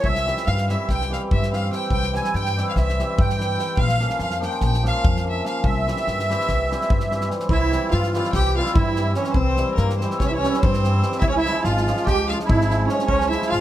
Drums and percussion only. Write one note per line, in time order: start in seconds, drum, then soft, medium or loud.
0.04 kick medium
0.16 snare soft
0.27 snare soft
0.37 snare soft
0.46 snare soft
0.57 snare soft
0.69 snare soft
0.89 kick medium
0.89 snare soft
1.01 snare soft
1.13 snare soft
1.31 kick medium
1.43 snare soft
1.53 snare soft
1.72 snare soft
1.90 kick medium
2.03 snare soft
2.15 snare soft
2.24 snare soft
2.35 snare soft
2.46 snare soft
2.58 snare soft
2.76 kick medium
2.76 snare soft
2.89 snare soft
2.99 snare soft
3.19 kick loud
3.30 snare soft
3.40 snare soft
3.59 snare soft
3.77 kick medium
3.89 snare soft
4.00 snare soft
4.10 snare soft
4.19 snare soft
4.30 snare soft
4.42 snare soft
4.61 kick medium
4.61 snare soft
4.73 snare soft
4.85 snare soft
5.05 kick loud
5.17 snare soft
5.46 snare soft
5.64 kick medium
5.88 snare soft
5.97 snare soft
6.07 snare soft
6.19 snare soft
6.30 snare soft
6.40 snare soft
6.48 kick medium
6.48 snare soft
6.72 snare soft
6.81 snare soft
6.90 kick loud
7.00 snare soft
7.11 snare soft
7.21 snare soft
7.31 snare soft
7.40 snare soft
7.49 kick medium
7.72 snare soft
7.91 snare soft
8.03 snare soft
8.14 snare soft
8.24 snare soft
8.33 kick medium
8.33 snare soft
8.66 snare soft
8.76 kick loud
8.96 snare soft
9.15 snare soft
9.24 snare soft
9.34 kick medium
9.57 snare soft
9.77 snare soft
9.90 snare soft
10.01 snare soft
10.10 snare soft
10.20 kick medium
10.20 snare soft
10.43 snare soft
10.54 snare soft
10.63 kick loud
10.73 snare soft
10.84 snare soft
11.02 snare soft
11.12 snare soft
11.22 kick medium
11.46 snare soft
11.65 snare soft
11.77 snare soft
11.87 snare soft
11.97 snare soft
12.07 kick medium
12.07 snare soft
12.30 snare soft
12.40 snare soft
12.50 kick loud
12.61 snare soft
12.70 snare soft
12.89 snare soft
12.99 snare soft
13.09 kick medium
13.21 snare soft
13.32 snare soft
13.42 snare soft
13.52 snare soft